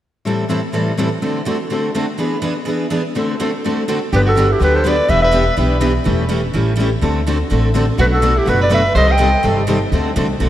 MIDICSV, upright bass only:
0, 0, Header, 1, 2, 480
1, 0, Start_track
1, 0, Tempo, 241546
1, 501, Time_signature, 4, 2, 24, 8
1, 20850, End_track
2, 0, Start_track
2, 0, Title_t, "Upright bass"
2, 0, Program_c, 0, 32
2, 8202, Note_on_c, 0, 31, 74
2, 8970, Note_off_c, 0, 31, 0
2, 9153, Note_on_c, 0, 38, 68
2, 9925, Note_off_c, 0, 38, 0
2, 10116, Note_on_c, 0, 28, 77
2, 10886, Note_off_c, 0, 28, 0
2, 11080, Note_on_c, 0, 35, 74
2, 11848, Note_off_c, 0, 35, 0
2, 12047, Note_on_c, 0, 28, 84
2, 12812, Note_off_c, 0, 28, 0
2, 13002, Note_on_c, 0, 33, 64
2, 13768, Note_off_c, 0, 33, 0
2, 13954, Note_on_c, 0, 38, 76
2, 14723, Note_off_c, 0, 38, 0
2, 14923, Note_on_c, 0, 33, 65
2, 15687, Note_off_c, 0, 33, 0
2, 15868, Note_on_c, 0, 35, 79
2, 16637, Note_off_c, 0, 35, 0
2, 16841, Note_on_c, 0, 30, 66
2, 17604, Note_off_c, 0, 30, 0
2, 17784, Note_on_c, 0, 36, 77
2, 18552, Note_off_c, 0, 36, 0
2, 18757, Note_on_c, 0, 31, 68
2, 19519, Note_off_c, 0, 31, 0
2, 19705, Note_on_c, 0, 38, 81
2, 20088, Note_off_c, 0, 38, 0
2, 20191, Note_on_c, 0, 36, 80
2, 20595, Note_off_c, 0, 36, 0
2, 20674, Note_on_c, 0, 35, 71
2, 20850, Note_off_c, 0, 35, 0
2, 20850, End_track
0, 0, End_of_file